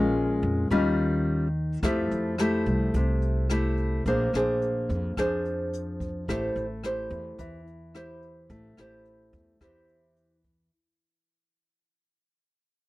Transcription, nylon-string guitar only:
0.00 0.69 A#2 medium
0.00 0.67 G#3 medium
0.00 0.67 C#4 medium
0.00 0.67 F4 medium
0.71 1.80 D#3 medium
0.71 1.46 G3 medium
0.71 1.47 C#4 medium
0.71 1.47 F4 medium
1.83 2.92 F3 medium
1.83 2.35 A3 medium
1.83 2.35 E4 medium
1.83 2.35 G4 medium
2.40 3.46 A3 medium
2.40 3.46 E4 medium
2.40 3.46 G4 medium
2.96 4.04 C3 medium
3.51 4.04 A3 medium
3.51 4.04 E4 medium
3.51 4.04 G4 medium
4.07 5.15 A#3 medium
4.07 4.30 D4 medium
4.07 4.30 G#4 medium
4.07 4.30 C5 medium
4.35 5.13 D4 medium
4.35 5.13 G#4 medium
4.35 5.14 C5 medium
5.18 6.26 F3 medium
5.18 6.24 D4 medium
5.18 6.24 G#4 medium
5.18 6.25 C5 medium
6.29 7.37 A3 medium
6.29 6.64 E4 medium
6.29 6.64 G4 medium
6.29 6.65 C5 medium
6.84 7.59 E4 medium
6.84 7.59 G4 medium
6.84 7.59 C5 medium
7.39 8.48 E3 medium
7.95 8.74 E4 medium
7.95 8.74 G4 medium
7.95 8.74 C5 medium
8.50 9.59 A3 medium
8.79 9.58 E4 medium
8.79 9.58 G4 medium
8.79 9.58 C5 medium
9.61 10.70 E3 medium
9.61 10.36 E4 medium
9.61 10.36 G4 medium
9.61 10.36 C5 medium

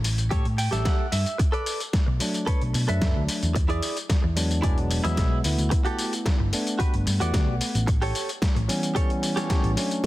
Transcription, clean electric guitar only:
0.31 0.45 G4 medium
0.31 0.45 A4 medium
0.31 0.46 C#5 loud
0.57 0.83 G5 medium
0.57 muted clean electric guitar stroke soft
0.71 1.05 G4 medium
0.71 1.06 A4 medium
0.71 1.06 E5 loud
0.85 1.10 F#5 medium
1.12 1.37 E5 medium
1.38 muted clean electric guitar stroke loud
1.52 1.80 A4 medium
1.52 1.80 B4 medium
1.52 1.81 D5 loud
2.06 muted clean electric guitar stroke soft
2.46 2.61 A4 medium
2.46 2.61 B4 medium
2.46 2.62 C#5 loud
2.74 muted clean electric guitar stroke soft
2.88 3.22 A4 medium
2.88 3.22 B4 medium
2.88 3.22 E5 loud
3.55 muted clean electric guitar stroke loud
3.69 3.96 E4 medium
3.69 3.96 G#4 medium
3.69 3.97 D5 loud
4.22 muted clean electric guitar stroke soft
4.62 4.77 E4 medium
4.62 4.77 G#4 medium
4.62 4.78 D5 medium
4.90 muted clean electric guitar stroke soft
5.04 5.38 E4 medium
5.04 5.38 G#4 medium
5.04 5.39 E5 loud
5.70 muted clean electric guitar stroke loud
5.85 6.12 F#4 medium
5.85 6.13 G4 medium
5.85 6.13 A4 loud
6.39 muted clean electric guitar stroke soft
6.79 6.93 F#4 medium
6.79 6.94 G4 medium
6.79 6.94 B4 loud
7.06 muted clean electric guitar stroke soft
7.20 7.54 F#4 medium
7.20 7.55 G4 medium
7.20 7.55 D5 loud
7.87 muted clean electric guitar stroke loud
8.02 8.29 G4 medium
8.02 8.29 A4 medium
8.02 8.30 C#5 loud
8.55 muted clean electric guitar stroke soft
8.95 9.10 G4 medium
8.95 9.10 A4 medium
8.95 9.10 C#5 loud
9.22 muted clean electric guitar stroke soft
9.36 9.70 G4 medium
9.36 9.71 A4 medium
9.36 9.71 C#5 medium

